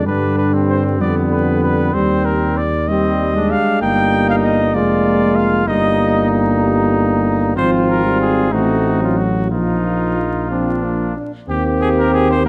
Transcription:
0.06 G2 D3 G3 D4 B4
0.38 B4
0.54 C4
0.70 C5
1.00 F2 D3 G3 B3 D5
1.32 B4
1.64 B4
1.94 D#2 G3 C4 C5
2.25 A#4
2.57 D5
2.87 G3 C4 D#5
3.35 G#3 D4
3.51 F5
3.81 G1 G3 A#3 D#4 G5
4.29 F5
4.43 D#5
4.74 F1 G#3 A#3 F4 D5
5.36 F5
5.67 G1 G3 A#3 D#4 D#5
7.56 G#1 F3 C4 F4 C5
7.89 A#4
8.05 G3
8.21 G#4
8.52 A1 A3 C4 D#4 F#4
9.02 F#3 F4
9.17 F#4
9.51 A#1 F3 A#3 D#4 F4
10.51 F3 C4 D4
10.84 A#3
11.17 D4
11.49 D#2 A#3 C4 G4
11.81 G#4
11.99 A#4
12.14 G#4
12.31 C5
12.45 A#3

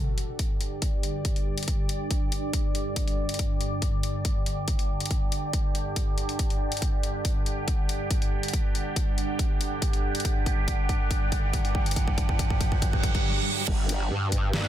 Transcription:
Already playing: G2 D3 D4 G4 D5
0.18 closed hi-hat
0.39 kick, closed hi-hat
0.61 closed hi-hat
0.82 kick, closed hi-hat
1.03 closed hi-hat
1.25 kick, closed hi-hat
1.36 closed hi-hat
1.58 closed hi-hat
1.63 closed hi-hat
1.68 kick, closed hi-hat
1.89 closed hi-hat
2.11 kick, closed hi-hat
2.32 closed hi-hat
2.53 kick, closed hi-hat
2.75 closed hi-hat
2.96 kick, closed hi-hat
3.08 closed hi-hat
3.29 closed hi-hat
3.34 closed hi-hat
3.39 kick, closed hi-hat
3.61 closed hi-hat
3.82 kick, closed hi-hat
4.03 closed hi-hat
4.25 kick, closed hi-hat
4.46 closed hi-hat
4.68 kick, closed hi-hat
4.79 closed hi-hat
5.00 closed hi-hat
5.06 closed hi-hat
5.11 kick, closed hi-hat
5.32 closed hi-hat
5.53 kick, closed hi-hat
5.75 closed hi-hat
5.96 kick, closed hi-hat
6.18 closed hi-hat
6.29 closed hi-hat
6.39 kick, closed hi-hat
6.50 closed hi-hat
6.72 closed hi-hat
6.77 closed hi-hat
6.82 F#5, kick, closed hi-hat, riser
7.03 closed hi-hat
7.25 kick, closed hi-hat
7.46 closed hi-hat
7.68 kick, closed hi-hat
7.89 closed hi-hat
8.11 kick, closed hi-hat
8.22 closed hi-hat
8.43 closed hi-hat
8.48 closed hi-hat
8.53 kick, closed hi-hat
8.75 closed hi-hat
8.96 kick, closed hi-hat
9.18 closed hi-hat
9.39 kick, closed hi-hat
9.61 closed hi-hat
9.82 kick, closed hi-hat
9.93 closed hi-hat
10.15 closed hi-hat
10.20 closed hi-hat
10.25 kick, closed hi-hat
10.46 kick, closed hi-hat
10.68 kick, closed hi-hat
10.89 kick, closed hi-hat
11.11 kick, closed hi-hat
11.32 kick, closed hi-hat
11.53 kick, closed hi-hat
11.65 closed hi-hat
11.75 kick
11.86 closed hi-hat
11.91 closed hi-hat
11.96 kick, closed hi-hat
12.08 kick
12.18 kick, closed hi-hat
12.29 kick
12.39 kick, closed hi-hat
12.50 kick
12.61 kick, closed hi-hat
12.72 kick
12.82 kick, closed hi-hat, reverse cymbal
12.93 kick
13.03 kick, closed hi-hat
13.15 kick, closed hi-hat
13.68 G1 G3 D4 G4, kick, crash
13.89 closed hi-hat
14.11 G2
14.32 kick, closed hi-hat
14.53 snare

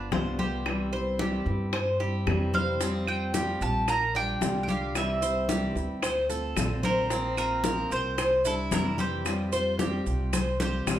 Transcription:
Already playing: B3 D4 F4
0.12 C2 G3 B3 F4 C5, high bongo, low bongo, high conga
0.39 G4 C5, high conga
0.66 C3 E3 G3 C4 E4, high bongo, high conga, claves
0.92 G3 C4 E4 C5, high conga
1.19 C3 E3 G3 C4 E4 G4, high bongo, high conga
1.46 G2 G3 C4 E4, high bongo, high conga
1.73 C5, muted steel-string acoustic guitar stroke, high bongo, high conga, claves
2.00 G3 C4 E4 G4, high bongo, high conga
2.26 F2 C3 E3 G3 C4 E4, high bongo, low bongo, high conga, claves
2.54 C5 F5, high bongo, high conga
2.81 F3 G3 C4 F4, high bongo, high conga, maracas
3.07 G3 C4 F4 G5, high conga, claves
3.34 F3 G3 C4 F4 G4, high bongo, high conga, maracas
3.60 A#1 G3 C4 F4 A5, maracas
3.88 A#4 A#5, muted steel-string acoustic guitar stroke, high bongo, high conga, claves, maracas
4.15 G3 D4 F4 G5, high conga
4.41 C2 D3 G3 D4 F4, high bongo, low bongo, high conga, maracas
4.63 G5
4.68 G4 F5, high conga, maracas
4.95 C3 E3 G3 C4 E4 E5, high bongo, high conga, claves, maracas
5.22 G3 C4 E4 C5, high conga, maracas
5.49 C3 E3 G3 C4 E4 G4, high bongo, high conga, maracas
5.75 D2 G3 C4 E4, high bongo, high conga, maracas
6.02 C5, muted steel-string acoustic guitar stroke, high bongo, high conga, claves, maracas
6.29 A3 C4 F4 A4, high bongo, high conga, maracas
6.56 A#1 D3 A3 C4 F4, high bongo, low bongo, high conga, claves, maracas
6.83 A#4 C5, high bongo, high conga, maracas
7.10 F3 A#3 C4 F4, high bongo, high conga, maracas
7.37 A#3 C4 F4 A#4, high conga, claves, maracas
7.64 F3 A#3 C4 F4 A#4, high bongo, high conga, maracas
7.90 C2 A#3 C4 F4 C5, maracas
8.18 C5, muted steel-string acoustic guitar stroke, high bongo, high conga, claves, maracas
8.45 G3 D4 E4 A4, high conga, maracas
8.71 F2 C3 E3 G3 D4 E4 A#4, high bongo, low bongo, high conga, maracas
8.98 G4 C5, high conga, maracas
9.25 F3 G3 C4 F4, high bongo, high conga, claves, maracas
9.52 G3 C4 F4 C5, high conga, maracas
9.79 F3 G3 C4 F4 G4, high bongo, high conga, maracas
10.06 C2 G3 C4 F4, high bongo, high conga, maracas
10.33 C5, muted steel-string acoustic guitar stroke, high bongo, high conga, claves, maracas
10.60 G3 C4 F4 G4 C5, high bongo, high conga, maracas
10.86 A#1 F3 G3 C4 F4, high bongo, low bongo, claves, maracas

